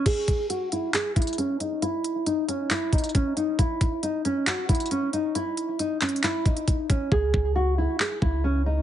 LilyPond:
<<
  \new Staff \with { instrumentName = "Nylon-string guitar" } { \time 4/4 \key cis \minor \tempo 4 = 136 gis'4 fis'8 e'8 gis'8 e'8 cis'8 dis'8 | e'4 dis'8 cis'8 e'8 dis'8 cis'8 dis'8 | e'4 dis'8 cis'8 fis'8 e'8 cis'8 dis'8 | e'4 dis'8 cis'8 e'8 dis'4 cis'8 |
gis'4 fis'8 e'8 gis'8 e'8 cis'8 dis'8 | }
  \new Staff \with { instrumentName = "808-style bass" } { \clef bass \time 4/4 \key cis \minor r1 | r1 | r1 | r1 |
cis,8 cis,4~ cis,16 r8. cis,4. | }
  \new DrumStaff \with { instrumentName = "Drums" } \drummode { \time 4/4 <cymc hh bd>8 <hh bd>8 hh8 hh8 <hc hh>8 <hh bd>32 hh32 hh32 hh32 hh8 hh8 | hh8 hh8 hh8 hh8 <hc hh>8 <hh bd>32 hh32 hh32 hh32 <hh bd>8 hh8 | <hh bd>8 <hh bd>8 hh8 hh8 <hc hh>8 <hh bd>32 hh32 hh32 hh32 hh8 hh8 | hh8 hh8 \tuplet 3/2 { hh16 r16 r16 <hc hh>16 hh16 hh16 } <hc hh>8 <hh bd>16 hh16 <hh bd>8 <hh bd>8 |
bd8 bd8 r4 hc8 bd8 r4 | }
>>